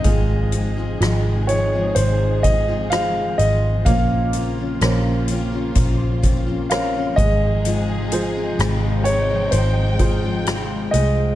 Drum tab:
HH |xxxxxxxx|xxxxxxxx|xxxxxxxx|
SD |--r---r-|--r---r-|--r---r-|
BD |o----o--|o---oo-o|-----o--|